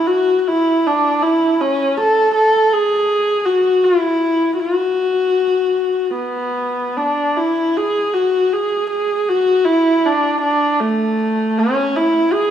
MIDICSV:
0, 0, Header, 1, 2, 480
1, 0, Start_track
1, 0, Tempo, 752823
1, 51, Time_signature, 3, 2, 24, 8
1, 2930, Tempo, 797872
1, 4850, Tempo, 762389
1, 7821, End_track
2, 0, Start_track
2, 0, Title_t, "Viola"
2, 0, Program_c, 0, 41
2, 45, Note_on_c, 0, 66, 72
2, 245, Note_off_c, 0, 66, 0
2, 245, Note_on_c, 0, 66, 50
2, 305, Note_on_c, 0, 64, 75
2, 314, Note_off_c, 0, 66, 0
2, 552, Note_on_c, 0, 62, 74
2, 562, Note_off_c, 0, 64, 0
2, 781, Note_on_c, 0, 64, 72
2, 791, Note_off_c, 0, 62, 0
2, 1024, Note_on_c, 0, 61, 80
2, 1033, Note_off_c, 0, 64, 0
2, 1258, Note_on_c, 0, 69, 78
2, 1267, Note_off_c, 0, 61, 0
2, 1494, Note_off_c, 0, 69, 0
2, 1498, Note_on_c, 0, 69, 82
2, 1738, Note_on_c, 0, 68, 90
2, 1748, Note_off_c, 0, 69, 0
2, 2203, Note_on_c, 0, 66, 78
2, 2213, Note_off_c, 0, 68, 0
2, 2447, Note_on_c, 0, 64, 74
2, 2456, Note_off_c, 0, 66, 0
2, 2925, Note_off_c, 0, 64, 0
2, 2929, Note_on_c, 0, 66, 63
2, 3856, Note_off_c, 0, 66, 0
2, 3863, Note_on_c, 0, 59, 58
2, 4358, Note_on_c, 0, 62, 61
2, 4367, Note_off_c, 0, 59, 0
2, 4598, Note_on_c, 0, 64, 65
2, 4607, Note_off_c, 0, 62, 0
2, 4838, Note_on_c, 0, 68, 76
2, 4847, Note_off_c, 0, 64, 0
2, 5069, Note_on_c, 0, 66, 67
2, 5078, Note_off_c, 0, 68, 0
2, 5318, Note_on_c, 0, 68, 75
2, 5327, Note_off_c, 0, 66, 0
2, 5549, Note_off_c, 0, 68, 0
2, 5553, Note_on_c, 0, 68, 73
2, 5796, Note_on_c, 0, 66, 74
2, 5805, Note_off_c, 0, 68, 0
2, 6020, Note_on_c, 0, 64, 77
2, 6029, Note_off_c, 0, 66, 0
2, 6276, Note_on_c, 0, 62, 75
2, 6286, Note_off_c, 0, 64, 0
2, 6499, Note_off_c, 0, 62, 0
2, 6503, Note_on_c, 0, 62, 75
2, 6749, Note_on_c, 0, 57, 73
2, 6759, Note_off_c, 0, 62, 0
2, 7239, Note_on_c, 0, 61, 80
2, 7249, Note_off_c, 0, 57, 0
2, 7475, Note_on_c, 0, 64, 79
2, 7484, Note_off_c, 0, 61, 0
2, 7708, Note_on_c, 0, 68, 93
2, 7718, Note_off_c, 0, 64, 0
2, 7821, Note_off_c, 0, 68, 0
2, 7821, End_track
0, 0, End_of_file